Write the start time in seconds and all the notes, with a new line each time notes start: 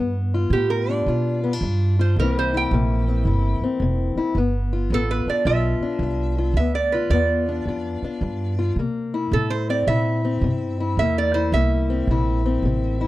Already playing: G2 B3
0.34 F4
0.50 G2 A2 G4
0.54 B3
0.70 A#4
0.90 D4 D5
1.06 G2 B2 F4
1.44 B3
1.53 D4
1.61 G2
1.99 F4 C5
2.16 C2 C3 E3 A#3 A#4
2.21 C4 E4
2.39 C5
2.54 E4 G5
2.71 A#1 C3 A#3
3.08 C4
3.25 G1 C3 E4
3.60 C4, muted upright bass stroke
3.80 F1 C3
4.15 E4, muted upright bass stroke
4.35 G1 G2 B3
4.73 F4
4.90 A1 G2 B3 A4
5.11 B4
5.26 D4 D5, muted upright bass stroke
5.45 B1 G2 F4 E5
5.80 D4, muted upright bass stroke
5.99 C2 G2
6.38 F4
6.54 D2 E5
6.58 G2 B3
6.75 D5
6.92 F4 B4
7.10 E2 G2 B3 D5
7.49 D4
7.65 F2 G2 F4
8.02 D4, muted upright bass stroke
8.21 G2
8.59 F4
8.76 C3 A#3
9.14 E4
9.31 A2 C3 A4
9.50 C5
9.69 C4 D5
9.87 A#2 C3 E4 E5
10.25 C4
10.41 G2 C3
10.80 E4
10.97 E2 C3 A#3 E5
11.18 D5
11.34 E4 C5
11.52 C2 C3 A#3 E5
11.90 C4
12.07 A#1 C3 E4
12.46 C4
12.62 A1 C3
13.01 E4